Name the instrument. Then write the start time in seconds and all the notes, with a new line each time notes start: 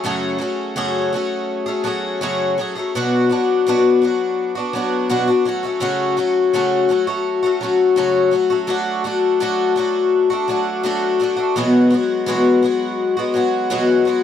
twelve-string acoustic guitar
0.04 F#2 C#3 F#3 A3 C#4 G#4
0.39 F#3 A3 C#4 G#4
0.76 F#2 C#3 F#3 A3 C#4 G#4
1.13 F#3 A3 C#4 G#4
1.66 F#3 A3 C#4 G#4
1.84 F#3 A3 C#4 G#4
2.21 F#2 C#3 F#3 A3 C#4 G#4
2.58 F#3 A3 C#4 G#4
2.75 F#3 A3 C#4 G#4
2.95 B2 F#3 B3 D4 F#4
3.29 F#3 B3 D4 F#4
3.67 B2 F#3 B3 D4 F#4
4.02 F#3 B3 D4 F#4
4.55 B3 D4 F#4
4.73 F#3 B3 D4 F#4
5.09 B2 F#3 B3 D4 F#4
5.28 B3 D4 F#4
5.45 F#3 A3 C#4 F#4
5.63 F#3 A3 C#4 F#4
5.80 F#2 C#3 F#3 A3 C#4 F#4
6.17 F#3 A3 C#4 F#4
6.53 F#2 C#3 F#3 A3 C#4 F#4
6.89 F#3 A3 C#4 F#4
7.07 F#3 A3 C#4 F#4
7.43 F#3 A3 C#4 F#4
7.61 F#3 A3 C#4 F#4
7.96 F#2 C#3 F#3 A3 C#4 F#4
8.31 F#3 A3 C#4 F#4
8.50 F#3 A3 C#4 F#4
8.67 F#3 A3 D4 F#4
9.04 F#3 A3 D4 F#4
9.40 F#3 A3 D4 F#4
9.76 F#3 A3 D4 F#4
10.30 A3 D4 F#4
10.48 F#3 A3 D4 F#4
10.83 F#3 A3 D4 F#4
11.20 F#3 A3 D4 F#4
11.36 A3 D4 F#4
11.56 E2 B2 F#3 G#3 B3 F#4
11.90 F#3 G#3 B3 F#4
12.26 E2 B2 F#3 G#3 B3 F#4
12.63 F#3 G#3 B3 F#4
13.17 F#3 G#3 B3 F#4
13.34 F#3 G#3 B3 F#4
13.70 E2 B2 F#3 G#3 B3 F#4
14.05 F#3 G#3 B3 F#4